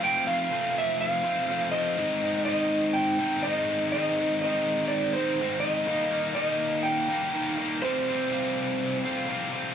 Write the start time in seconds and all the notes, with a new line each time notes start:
0.02 F3 A3 C4 F4 G5
0.27 A3 C4 F4 F5
0.50 F3 A3 C4 F4
0.78 E5
1.01 F5
1.24 A3 C4 F4
1.50 F3 A3 C4 F4
1.71 A3 C4 F4 D#5
1.98 G#2 D#3 G#3 C4 D#4
2.22 G#3 C4 D#4
2.45 D#3 G#3 C4 D#4 D#5
2.93 G5
3.19 G#3 C4 D#4
3.43 G#2 D#3 G#3 C4 D#5
3.47 D#4
3.69 G#3 C4 D#4
3.92 G#2 D#3 D#4 D#5
3.96 G#3 C4
4.19 G#3 C4 D#4
4.42 D#3 G#3 C4 D#4 D#5
4.88 D5
5.13 C4 D#4 C5
5.18 G#3
5.40 G#2 D#3 G#3 C4 D#4
5.60 C4 D#4 D#5
5.65 G#3
5.87 D#3 G3 A#3 D#4
6.11 G3 A#3 D#4
6.34 D#3 G3 A#3 D#4 D#5
6.83 G5
7.09 G3 A#3 D#4
7.34 D#3 G3 A#3 D#4
7.58 G3 A#3 D#4
7.82 C3 G3 C4 F4 C5
8.08 G3 C4 F4
8.30 C3 G3 C4 F4
9.05 G3 C4 F4
9.28 C3 G3 C4 F4
9.53 G3 C4 F4